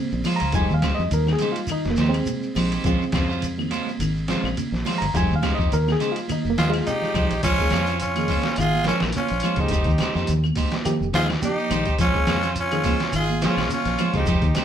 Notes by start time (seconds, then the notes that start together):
Already playing: C#3 G#3 C4
0.11 A#1, shekere
0.24 F3 G#3 C#4 F4 C5, open hi-hat, high conga, low conga, claves, shekere
0.36 A#5, ride bell
0.41 C#2 C#4 F4 C5, shekere
0.52 F1 F3 G3 G#3 D#4 G4 C5 G#5, kick, ride bell, shekere
0.70 D#2 F5, shekere
0.82 C#3 G#3 G4 C5, muted fingered electric bass stroke, muted clean electric guitar stroke, kick, snare, ride bell, high conga, low conga, claves, shekere
0.95 D#5
0.99 F2, shekere
1.11 D#2 A#4, ride bell, low conga, shekere
1.26 D#3, snare, high conga, claves, shekere
1.33 G#4
1.39 C#3 G#3 D#4 G4 C5, ride bell, high conga, low conga, shekere
1.52 F4, ride bell, shekere
1.67 D#3, ride bell, claves, shekere
1.72 D#4
1.84 F1, snare, high conga, shekere
1.91 A#3
1.96 D#2 F3 D#4 G4 C5, snare, ride bell, shekere
2.09 G#3 C4, shekere
2.14 ride bell, claves
2.26 C3, ride bell, high conga, shekere
2.43 shekere
2.55 A#1 F3 G#3 D#4 G4 C5, open hi-hat, high conga, low conga, claves, shekere
2.72 D#4 G4 C5, ride bell, shekere
2.84 A#1 C#3 F3 G#3 C4 C#4 F4 C5, kick, ride bell, shekere
3.02 shekere
3.12 F2 C#3 G#3 C#4 F4 C5, kick, snare, ride bell, high conga, claves, shekere
3.29 C#4 F4 C5, shekere
3.42 ride bell, low conga, shekere
3.58 D#3, high conga, claves, shekere
3.71 G#3 C#4 F4 C5, ride bell, high conga, low conga, shekere
3.86 high conga, shekere
3.99 G#1 D#3, ride bell, claves, shekere
4.17 shekere
4.28 C#3 F3 G#3 C4 C#4 F4 C5, snare, ride bell, shekere
4.44 A#1, claves, shekere
4.57 C#3, ride bell, high conga, shekere
4.72 A#1, snare, shekere
4.85 F3 G#3 C#4 F4 C5, snare, open hi-hat, high conga, low conga, claves, shekere
4.98 G1 A#5, ride bell
5.02 shekere
5.14 F1 F3 G3 G#3 D#4 G4 C5 G#5, kick, ride bell, shekere
5.31 D#2, shekere
5.36 F5
5.42 C#3 G#3 D#4 G4 C5, muted fingered electric bass stroke, kick, snare, ride bell, high conga, claves, shekere
5.55 F2 D#5, kick
5.59 D#4 G4 C5, shekere
5.71 D#2 A#4, ride bell, low conga, shekere
5.86 D#3, snare, high conga, claves, shekere
5.92 G#4
6.00 C#3 G#3 D#4 G4 C5, ride bell, high conga, low conga, shekere
6.12 F4
6.16 ride bell, shekere
6.28 D#3 D#4, ride bell, high conga, claves, shekere
6.44 F1, high conga, shekere
6.50 A#3
6.57 D#2 F3 G#3 D#4 F4 G4 G#4 C5, snare, ride bell, high conga, shekere
6.70 G#3 F4
6.74 snare, ride bell, claves, shekere
6.87 C3 D#4 G4, ride bell, shekere
7.01 snare, low conga, shekere
7.14 C2 F3 G#3 D#4 G4 C5, kick, ride bell, low conga, claves, shekere
7.30 A#1, ride bell, low conga, shekere
7.43 A#1 F3 G#3 C#4 F4 C5, kick, snare, closed hi-hat, crash, shekere
7.58 F3 A#3 D#4 G#4, kick, shekere
7.70 F2 C#3 G#3 C#4 F4 C5, snare, closed hi-hat, high conga, claves, shekere
7.87 C#4 F4 C5, closed hi-hat, shekere
8.00 C#4 F4, closed hi-hat, shekere
8.15 D#3 F3 A#3 D#4 G#4, closed hi-hat, high conga, claves
8.19 shekere
8.28 C#3 G#3 C#4 F4 C5, kick, open hi-hat, high conga, low conga, shekere
8.43 snare, closed hi-hat, high conga, shekere
8.56 G#1 D#3 F4 G#4, closed hi-hat, claves, shekere
8.73 high conga, shekere
8.84 F3 G#3 A#3 C#4 D#4 F4 A#4 C5, snare, closed hi-hat
8.88 shekere
9.00 A#1, snare, claves, shekere
9.12 C#3, closed hi-hat, high conga, shekere
9.17 C#4 F4
9.28 A#1, closed hi-hat, shekere
9.40 F3 G#3 C#4, closed hi-hat, high conga, low conga, claves, shekere
9.44 F4 C5
9.56 C#2 F3 A#3 C#4 D#4 G#4 C5, kick, closed hi-hat, shekere
9.61 D#4 G4
9.68 F1 G#3 D#4 G4, muted clean electric guitar stroke, kick, closed hi-hat
9.73 C5, shekere
9.84 D#2, kick, closed hi-hat
9.89 shekere
9.98 C#3 G#3 D#4 G4 C5, muted fingered electric bass stroke, snare, closed hi-hat, high conga, claves, shekere
10.15 F2 F3 A#3 D#4 G4 C5, snare, shekere
10.27 D#2, closed hi-hat, low conga, shekere
10.44 D#3, high conga, claves, shekere
10.55 G#3 D#4 G4 C5, kick, open hi-hat, high conga, low conga, shekere
10.72 snare, closed hi-hat, high conga, shekere
10.85 D#3 F3 A#3 D#4 G4, closed hi-hat, claves, shekere
11.01 F1, shekere
11.13 D#2 F3 G#3 D#4 F4 G#4 C5, muted clean electric guitar stroke, snare, closed hi-hat, shekere
11.29 snare, claves, shekere
11.41 C#3 F3 A#3 D#4 G4, closed hi-hat, high conga, shekere
11.58 shekere
11.70 A#1 D#3 G#3 D#4 G4 C5, closed hi-hat, high conga, low conga, claves, shekere
11.85 D#4 G4 C5, kick, closed hi-hat, shekere
11.99 A#1 F3 G#3 C#4 F4 C5, kick, snare, closed hi-hat, shekere
12.03 F4
12.14 F3 A#3 D#4 G#4, kick, shekere
12.27 F2 C#3 G#3 C#4 F4 C5, snare, closed hi-hat, high conga, claves, shekere
12.43 C#4 F4 C5, snare, closed hi-hat, shekere
12.56 closed hi-hat, shekere
12.60 C#4 F4
12.71 D#3 F3 A#3 D#4 G#4, closed hi-hat, high conga, claves, shekere
12.84 C#3 G#3 C#4 F4 C5, kick, open hi-hat, high conga, low conga, shekere
12.99 snare, closed hi-hat, shekere
13.12 G#1 D#3 F4, closed hi-hat, claves, shekere
13.17 G#4
13.28 high conga, shekere
13.42 F3 G#3 A#3 C#4 D#4 F4 G#4 C5, snare, closed hi-hat, shekere
13.46 F4
13.57 A#1, snare, claves, shekere
13.70 C#3 C#4, closed hi-hat, high conga, shekere
13.74 F4
13.85 A#1, snare, closed hi-hat, shekere
13.98 F3 G#3 C#4 F4 C5, closed hi-hat, high conga, low conga, claves, shekere
14.14 C#2 F3 A#3 C#4 D#4 F4 G#4 C5, kick, snare, closed hi-hat, shekere
14.18 G4
14.26 F1 F3 G#3 D#4 G4 C5, kick, closed hi-hat, shekere
14.42 D#2, kick, closed hi-hat, shekere
14.55 C#3 G#3 D#4 G4 C5, snare, closed hi-hat, high conga, low conga, claves, shekere